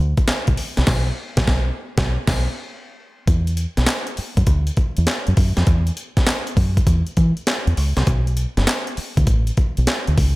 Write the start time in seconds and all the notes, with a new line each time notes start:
0.00 D2
0.17 kick, closed hi-hat
0.28 muted fingered electric bass stroke, snare, clap, closed hi-hat
0.47 B1, kick, closed hi-hat
0.57 open hi-hat
0.77 C2, snare, closed hi-hat
0.87 B1, kick, snare, crash
1.37 B1, kick, snare
1.48 B1, kick, snare
1.98 B1, kick, snare
2.27 B1, kick, snare, crash
3.27 E2, kick, closed hi-hat
3.47 closed hi-hat
3.57 closed hi-hat
3.77 B1, snare, closed hi-hat
3.86 snare, clap, closed hi-hat
4.07 closed hi-hat
4.17 muted fingered electric bass stroke, open hi-hat
4.37 F#2, kick, closed hi-hat
4.47 D2, kick, closed hi-hat
4.67 closed hi-hat
4.77 kick, closed hi-hat
4.97 E2, closed hi-hat
5.07 snare, clap, closed hi-hat
5.27 F#2, closed hi-hat
5.37 F#2, kick, open hi-hat
5.57 F2, snare, closed hi-hat
5.67 E2, kick, closed hi-hat
5.87 closed hi-hat
5.97 closed hi-hat
6.17 muted fingered electric bass stroke, kick, snare, closed hi-hat
6.27 snare, clap, closed hi-hat
6.47 closed hi-hat
6.57 F#2, kick, open hi-hat
6.77 kick, closed hi-hat
6.87 E2, kick, closed hi-hat
7.07 closed hi-hat
7.17 E3, kick, closed hi-hat
7.37 closed hi-hat
7.47 snare, clap, closed hi-hat
7.67 E2, closed hi-hat
7.77 C#2, open hi-hat
7.97 C2, snare, closed hi-hat
8.07 B1, kick, closed hi-hat
8.27 closed hi-hat
8.37 closed hi-hat
8.57 F#1, snare, closed hi-hat
8.67 snare, clap, closed hi-hat
8.87 closed hi-hat
8.97 muted fingered electric bass stroke, open hi-hat
9.17 D2, kick, closed hi-hat
9.27 A1, kick, closed hi-hat
9.47 closed hi-hat
9.57 kick, closed hi-hat
9.77 B1, closed hi-hat
9.87 snare, clap, closed hi-hat
10.07 D2, closed hi-hat
10.18 C#2, kick, open hi-hat